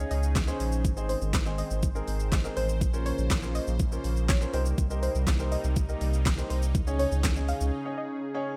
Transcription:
Already playing: analog synth pad C#3 C#4 D#4 G#4
0.00 grand piano C#4 D#4 G#4 C#5
0.11 sub bass C#2, synth pluck D#5, open hi-hat, shaker
0.23 shaker
0.35 kick, snare, clap, closed hi-hat, shaker
0.47 grand piano C#4 D#4 G#4 C5, shaker
0.60 sub bass A#1, open hi-hat, shaker
0.72 shaker
0.84 sub bass G#1, analog synth pad D#3 G#3 C5, kick, closed hi-hat, shaker
0.97 grand piano C4 D#4 G#4 C5, shaker
1.09 synth pluck C5, open hi-hat, shaker
1.22 sub bass G#1, shaker
1.33 kick, snare, clap, closed hi-hat, shaker
1.46 grand piano C4 D#4 G#4 C5, shaker
1.58 synth pluck D#5, open hi-hat, shaker
1.71 sub bass G#1, shaker
1.83 kick, closed hi-hat, shaker
1.95 grand piano C4 D#4 G#4 A#4, shaker
2.08 sub bass G#1, open hi-hat, shaker
2.20 shaker
2.32 kick, snare, clap, closed hi-hat, shaker
2.44 grand piano C4 D#4 G#4 A#4, shaker
2.57 sub bass A1, synth pluck C5, open hi-hat, shaker
2.69 shaker
2.81 sub bass A#1, analog synth pad C#3 A#3, kick, closed hi-hat, shaker
2.93 grand piano C#4 F4 A#4 C5, shaker
3.06 synth pluck C#5, open hi-hat, shaker
3.18 sub bass A#1, shaker
3.30 kick, snare, clap, closed hi-hat, shaker
3.43 grand piano C#4 F4 A#4 C5, shaker
3.55 synth pluck D#5, open hi-hat, shaker
3.67 sub bass A#1, shaker
3.79 kick, closed hi-hat, shaker
3.92 grand piano C#4 F4 A#4 C5, shaker
4.04 sub bass A#1, open hi-hat, shaker
4.17 shaker
4.29 synth pluck C#5, kick, snare, clap, closed hi-hat, shaker
4.41 grand piano C#4 F4 A#4 C5, shaker
4.53 sub bass C2, analog synth pad C3 G3 A#3 D#4, grand piano D#4 G4 A#4 C5, synth pluck C5, open hi-hat, shaker
4.66 shaker
4.78 sub bass C2, kick, closed hi-hat, shaker
4.90 grand piano D#4 G4 A#4 C5, shaker
5.03 synth pluck C5, open hi-hat, shaker
5.15 sub bass C2, shaker
5.27 kick, snare, clap, closed hi-hat, shaker
5.39 grand piano D#4 G4 A#4 C5, shaker
5.52 synth pluck D#5, open hi-hat, shaker
5.64 sub bass C2, shaker
5.76 kick, closed hi-hat, shaker
5.88 grand piano D#4 G4 A#4 D#5, shaker
6.01 sub bass C2, open hi-hat, shaker
6.13 shaker
6.25 kick, snare, clap, closed hi-hat, shaker
6.38 grand piano D#4 G4 A#4 C5, shaker
6.50 sub bass C2, synth pluck C5, open hi-hat, shaker
6.62 shaker
6.75 sub bass C#2, analog synth pad C#3 C#4 G#4, kick, closed hi-hat, shaker
6.87 grand piano C#4 D#4 G#4 C#5, shaker
6.99 synth pluck C#5, open hi-hat, shaker
7.12 sub bass C#2, shaker
7.24 kick, snare, clap, closed hi-hat, shaker
7.36 grand piano C#4 D#4 G#4 C#5, shaker
7.49 synth pluck F5, open hi-hat, shaker
7.61 sub bass C#2, shaker
7.85 grand piano C#4 D#4 G#4 C#5
7.98 synth pluck D#5
8.34 grand piano C#4 D#4 G#4 C#5

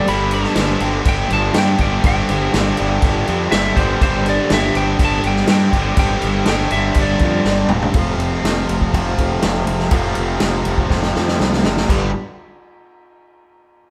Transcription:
Already playing: overdriven electric guitar G2 D3 G3 D4, reed electric piano D4 G4 C5 D5
0.06 fingered electric bass G1, distorted electric guitar G2 D3 G3 C4 D4 G4, lead electric guitar B5, crash
0.31 distorted electric guitar G3 C4 D4 G4, reed electric piano D4 G4 C5 D5, lead electric guitar A5, crash
0.43 snare
0.56 fingered electric bass G1, distorted electric guitar G3 C4 D4 G4, snare, crash
0.80 fingered electric bass G1, distorted electric guitar G2 D3 G3 C4 D4 G4, crash
1.03 fingered electric bass G1, distorted electric guitar G3 C4 D4 G4, kick, crash
1.09 lead electric guitar G5
1.29 fingered electric bass G1, distorted electric guitar G3 C4 D4 G4, crash
1.33 lead electric guitar A5
1.52 distorted electric guitar G2 D3 G3 C4 D4 G4, fingered electric bass G2, snare, crash
1.58 distorted electric guitar G3, lead electric guitar G5
1.78 fingered electric bass G1, overdriven electric guitar G2 D3, distorted electric guitar G3 C4 D4 G4, lead electric guitar G5, kick, crash
1.83 overdriven electric guitar G3
2.03 fingered electric bass G1, distorted electric guitar G2 D3 G3 C4 D4 G4, reed electric piano D4 G4 C5 D5, lead electric guitar G5, kick, crash
2.29 fingered electric bass G1, distorted electric guitar C4 D4 G4, reed electric piano D4 G4 C5 D5, crash
2.33 distorted electric guitar G3
2.53 fingered electric bass G1, distorted electric guitar G3 C4 D4 G4, snare, crash
2.76 fingered electric bass G1, distorted electric guitar G2 D3 G3 C4 D4 G4, crash
3.01 fingered electric bass G1, distorted electric guitar G3 C4 D4 G4, kick, crash
3.24 distorted electric guitar G3 C4 D4 G4, crash
3.29 fingered electric bass F2
3.50 fingered electric bass G1, distorted electric guitar G2 D3 G3 C4 D4 G4, lead electric guitar E5, snare, crash
3.76 fingered electric bass G1, overdriven electric guitar G2 D3, distorted electric guitar G3 C4 D4 G4, lead electric guitar C5, kick, crash
3.80 overdriven electric guitar G3
4.01 fingered electric bass G1, distorted electric guitar G2 D3 G3 C4 D4 G4, reed electric piano D4 G4 C5 D5, lead electric guitar C5, kick, crash
4.25 distorted electric guitar G3 C4 D4 G4, reed electric piano D4 G4 C5 D5, crash
4.29 lead electric guitar D5
4.50 fingered electric bass G1, distorted electric guitar G3 C4 D4, snare, crash
4.54 distorted electric guitar G4, lead electric guitar E5
4.74 fingered electric bass G1, distorted electric guitar G2 D3 G3 C4 D4 G4, lead electric guitar G5, crash
4.99 fingered electric bass G1, distorted electric guitar G3 C4 D4 G4, kick, crash
5.05 lead electric guitar A5
5.24 fingered electric bass G1, distorted electric guitar C4 D4 G4, lead electric guitar G5, crash
5.28 distorted electric guitar G3
5.36 snare
5.47 distorted electric guitar G2 D3 G3 C4 D4 G4, fingered electric bass G2, snare, crash
5.51 lead electric guitar G5
5.73 fingered electric bass G1, overdriven electric guitar G2 D3, distorted electric guitar C4 D4 G4, kick, crash
5.77 distorted electric guitar G3, overdriven electric guitar G3
5.97 fingered electric bass G1, distorted electric guitar G2 D3 G3 C4 D4 G4, reed electric piano D4 G4 C5 D5, lead electric guitar G5, kick, crash
6.22 fingered electric bass G1, distorted electric guitar C4 D4 G4, reed electric piano D4 G4 C5 D5, crash
6.26 distorted electric guitar G3
6.46 fingered electric bass G1, distorted electric guitar G3 C4, lead electric guitar G5, snare, crash
6.50 distorted electric guitar D4 G4
6.71 fingered electric bass G1, distorted electric guitar G3 C4 D4 G4, lead electric guitar E5, crash
6.75 distorted electric guitar G2 D3
6.94 fingered electric bass G1, distorted electric guitar G3 C4, kick, crash
6.99 distorted electric guitar D4 G4, lead electric guitar D5
7.19 fingered electric bass F2, distorted electric guitar D4 G4, kick, crash
7.24 distorted electric guitar G3 C4
7.45 fingered electric bass G1, distorted electric guitar G2 D3 G3 C4 D4, snare
7.50 distorted electric guitar G4
7.68 fingered electric bass E1, distorted electric guitar G4, mid tom
7.73 distorted electric guitar G3 C4 D4
7.82 floor tom
7.94 fingered electric bass F1, distorted electric guitar F2 C3 F3 A3, reed electric piano F4 A4 C5, kick, ride
7.98 distorted electric guitar C4 F4
8.18 fingered electric bass F1, ride
8.44 fingered electric bass F1, snare, ride
8.69 fingered electric bass F1, ride
8.81 kick
8.94 fingered electric bass F1, distorted electric guitar F2 C3 F3, kick, ride
9.17 fingered electric bass F1, reed electric piano F4 A4 C5, kick, ride
9.42 fingered electric bass F1, snare, ride
9.67 fingered electric bass F1, ride
9.79 snare
9.91 fingered electric bass F1, distorted electric guitar F2 C3 F3 A3 C4, reed electric piano F4 A4 C5, kick, ride
9.95 distorted electric guitar F4
10.15 fingered electric bass F1, ride
10.40 fingered electric bass F1, snare, ride
10.65 fingered electric bass F1, ride
10.78 kick
10.89 fingered electric bass F1, distorted electric guitar F2 C3 F3, kick, snare
11.02 snare
11.15 fingered electric bass F2, reed electric piano F4 A4 C5, snare
11.28 snare
11.40 fingered electric bass C2, snare
11.53 snare
11.64 fingered electric bass F#1, snare
11.77 snare
11.89 fingered electric bass G1, distorted electric guitar G2 D3 G3 B3 D4 B4, reed electric piano G4 B4 D5, kick, crash

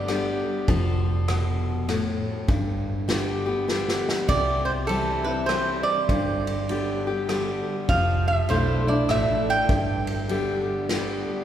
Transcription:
Already playing: fingered electric bass G1, resonator guitar played with a steel bar D5
0.08 steel-string acoustic guitar D3 G3 B3 G4, cross-stick, ride
0.68 fingered electric bass F1, steel-string acoustic guitar F3, kick, ride
1.28 steel-string acoustic guitar B2, cross-stick, ride
1.89 steel-string acoustic guitar A2, cross-stick, ride
2.48 fingered electric bass G1, steel-string acoustic guitar G2, kick, ride
3.08 steel-string acoustic guitar D3 G3 B3 G4, snare, ride
3.46 steel-string acoustic guitar B3 G4
3.68 steel-string acoustic guitar D3 G3 B3 G4, snare
3.88 snare
4.09 snare
4.28 fingered electric bass C2, steel-string acoustic guitar C3, resonator guitar played with a steel bar D5, kick, ride
4.65 resonator guitar played with a steel bar C5
4.87 steel-string acoustic guitar E3 G3 C4 E4, resonator guitar played with a steel bar A4, ride
5.24 steel-string acoustic guitar E4, resonator guitar played with a steel bar B4
5.28 steel-string acoustic guitar C4
5.46 steel-string acoustic guitar E3 G3 C4, resonator guitar played with a steel bar C5, cross-stick, ride
5.51 steel-string acoustic guitar E4
5.83 resonator guitar played with a steel bar D5
6.09 fingered electric bass G1, steel-string acoustic guitar G2, kick, ride
6.47 ride
6.69 steel-string acoustic guitar D3 G3 B3 G4, ride
7.07 steel-string acoustic guitar B3 G4
7.29 steel-string acoustic guitar D3 G3 B3 G4, cross-stick, ride
7.89 fingered electric bass F1, steel-string acoustic guitar F3, resonator guitar played with a steel bar F5, kick, ride
8.28 resonator guitar played with a steel bar E5
8.49 fingered electric bass B1, steel-string acoustic guitar F3 A3 D4 E4, resonator guitar played with a steel bar C5, ride
8.87 steel-string acoustic guitar D4 E4, resonator guitar played with a steel bar D5
9.09 fingered electric bass A1, steel-string acoustic guitar F3 A3 D4 E4, resonator guitar played with a steel bar E5, cross-stick, ride
9.50 resonator guitar played with a steel bar G5
9.69 fingered electric bass G1, steel-string acoustic guitar G2, kick, ride
10.07 ride
10.29 steel-string acoustic guitar D3 G3 B3 G4, ride
10.89 steel-string acoustic guitar D3 G3 B3 G4, snare, ride

